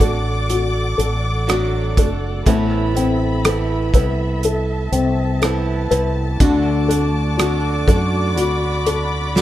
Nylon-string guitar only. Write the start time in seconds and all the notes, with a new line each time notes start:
0.00 A3 D4 F#4
1.47 F#3 A3 D4 F#4
1.97 A3 D4 F#4
2.46 A2 E3 B3 C4 E4
2.95 B3 C4 E4
3.45 E3 B3 C4 E4
3.94 B3 C4 E4
5.42 E3 B3 C4 E4
5.91 B3 C4 E4
6.40 D3 A3 D4 F#4
6.89 A3 D4 F#4
7.38 D3 A3 D4 F#4
7.88 A3 D4 F#4
9.35 D3 A3 D4 F#4